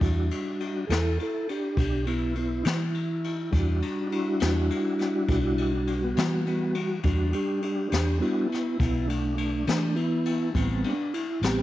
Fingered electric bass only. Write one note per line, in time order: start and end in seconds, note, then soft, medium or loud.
0.01 0.28 E2 medium
0.89 1.16 E2 medium
1.77 2.61 B1 loud
2.66 3.49 E3 loud
3.53 3.80 E2 medium
4.42 4.68 E2 loud
5.29 6.13 B1 medium
6.18 7.01 E3 loud
7.05 7.31 E2 medium
7.92 8.19 E2 medium
8.80 9.63 B1 medium
9.68 10.51 E3 loud
10.55 10.82 A1 medium
11.41 11.62 A1 medium